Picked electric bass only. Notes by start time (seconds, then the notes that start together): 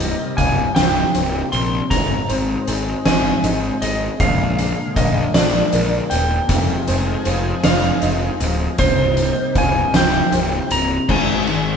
Already playing: C1
0.38 C1
0.77 C1
1.16 C1
1.53 A#1
1.91 G#1
2.30 G#1
2.68 G#1
3.06 G#1
3.44 G#1
3.82 G#1
4.20 A#1
4.96 A#1
5.35 A#1
5.73 A#1
6.12 D#1
6.49 F1
6.88 F1
7.26 F1
7.64 F1
8.03 F1
8.40 D1
8.79 C1
9.55 C1
9.94 C1
10.32 C1
10.71 C1
11.09 G#1